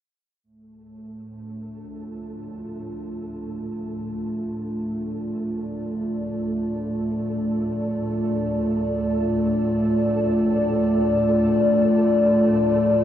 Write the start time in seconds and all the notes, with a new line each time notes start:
0.43 D2 A2 A3 A4
1.25 D4
1.77 F4
4.96 D5